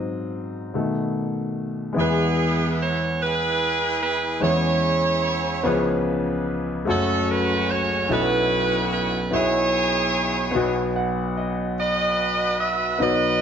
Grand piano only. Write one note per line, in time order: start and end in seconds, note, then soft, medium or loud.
0.00 0.70 G#2 medium
0.00 0.70 F#3 soft
0.00 0.70 C4 medium
0.00 0.76 D#5 loud
0.74 1.93 B2 medium
0.74 1.93 D#3 soft
0.74 1.93 A3 medium
1.93 4.38 E2 medium
1.93 4.38 E3 medium
1.93 4.36 G#3 medium
1.93 4.37 B3 medium
1.93 4.38 E4 medium
1.98 4.39 G#4 medium
1.98 4.40 B4 medium
4.40 5.61 E2 medium
4.40 5.61 E3 medium
4.40 5.64 G#3 medium
4.40 5.63 C#4 medium
4.40 5.65 E4 medium
4.40 5.64 G#4 medium
4.40 5.65 C#5 medium
5.63 6.83 C#2 medium
5.63 6.84 C#3 medium
5.63 6.88 F3 medium
5.63 6.87 B3 medium
5.63 6.85 C#4 medium
5.63 6.88 G#4 medium
5.63 6.88 B4 medium
6.85 8.06 F#1 medium
6.85 8.06 F#2 medium
6.85 8.09 A3 medium
6.85 8.07 C#4 medium
6.85 8.09 F#4 medium
6.85 8.09 A4 medium
6.85 8.11 C#5 medium
8.08 9.28 B1 medium
8.08 9.29 B2 medium
8.08 9.32 C#4 medium
8.08 9.30 E4 medium
8.08 9.33 F#4 medium
8.08 9.33 A4 medium
8.12 9.32 B4 medium
9.31 10.51 B1 medium
9.31 10.51 B2 medium
9.31 10.50 B3 medium
9.31 10.55 E4 medium
9.31 10.55 G#4 medium
9.31 10.55 B4 medium
9.35 10.56 E5 medium
10.51 12.96 B2 medium
10.51 12.94 B3 medium
10.51 12.96 F#4 medium
10.55 12.96 B1 medium
10.55 12.97 B4 medium
10.96 11.34 F#5 medium
11.37 11.75 D#5 medium
12.99 13.41 B1 medium
12.99 13.41 B2 medium
12.99 13.41 B3 medium
12.99 13.41 D#4 medium
12.99 13.41 F#4 medium
12.99 13.41 B4 medium
12.99 13.41 C#5 medium